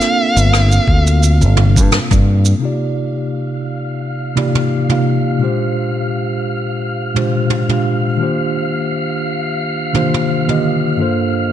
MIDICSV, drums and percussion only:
0, 0, Header, 1, 2, 480
1, 0, Start_track
1, 0, Tempo, 697674
1, 1803, Time_signature, 4, 2, 24, 8
1, 7929, End_track
2, 0, Start_track
2, 0, Title_t, "Drums"
2, 8, Note_on_c, 9, 82, 50
2, 10, Note_on_c, 9, 37, 34
2, 77, Note_off_c, 9, 82, 0
2, 79, Note_off_c, 9, 37, 0
2, 255, Note_on_c, 9, 82, 82
2, 324, Note_off_c, 9, 82, 0
2, 367, Note_on_c, 9, 37, 106
2, 375, Note_on_c, 9, 82, 67
2, 436, Note_off_c, 9, 37, 0
2, 443, Note_off_c, 9, 82, 0
2, 494, Note_on_c, 9, 82, 49
2, 563, Note_off_c, 9, 82, 0
2, 602, Note_on_c, 9, 36, 69
2, 671, Note_off_c, 9, 36, 0
2, 736, Note_on_c, 9, 82, 75
2, 805, Note_off_c, 9, 82, 0
2, 846, Note_on_c, 9, 82, 67
2, 915, Note_off_c, 9, 82, 0
2, 975, Note_on_c, 9, 82, 45
2, 1044, Note_off_c, 9, 82, 0
2, 1079, Note_on_c, 9, 45, 81
2, 1148, Note_off_c, 9, 45, 0
2, 1214, Note_on_c, 9, 36, 110
2, 1217, Note_on_c, 9, 82, 77
2, 1283, Note_off_c, 9, 36, 0
2, 1286, Note_off_c, 9, 82, 0
2, 1322, Note_on_c, 9, 82, 66
2, 1323, Note_on_c, 9, 45, 78
2, 1324, Note_on_c, 9, 37, 110
2, 1391, Note_off_c, 9, 82, 0
2, 1392, Note_off_c, 9, 37, 0
2, 1392, Note_off_c, 9, 45, 0
2, 1449, Note_on_c, 9, 45, 65
2, 1454, Note_on_c, 9, 36, 105
2, 1461, Note_on_c, 9, 82, 49
2, 1518, Note_off_c, 9, 45, 0
2, 1523, Note_off_c, 9, 36, 0
2, 1529, Note_off_c, 9, 82, 0
2, 1688, Note_on_c, 9, 82, 68
2, 1757, Note_off_c, 9, 82, 0
2, 3005, Note_on_c, 9, 45, 75
2, 3074, Note_off_c, 9, 45, 0
2, 3131, Note_on_c, 9, 45, 71
2, 3199, Note_off_c, 9, 45, 0
2, 3368, Note_on_c, 9, 45, 55
2, 3437, Note_off_c, 9, 45, 0
2, 4926, Note_on_c, 9, 45, 66
2, 4995, Note_off_c, 9, 45, 0
2, 5161, Note_on_c, 9, 45, 74
2, 5229, Note_off_c, 9, 45, 0
2, 5292, Note_on_c, 9, 45, 54
2, 5361, Note_off_c, 9, 45, 0
2, 6842, Note_on_c, 9, 45, 61
2, 6910, Note_off_c, 9, 45, 0
2, 6977, Note_on_c, 9, 45, 62
2, 7046, Note_off_c, 9, 45, 0
2, 7215, Note_on_c, 9, 45, 51
2, 7284, Note_off_c, 9, 45, 0
2, 7929, End_track
0, 0, End_of_file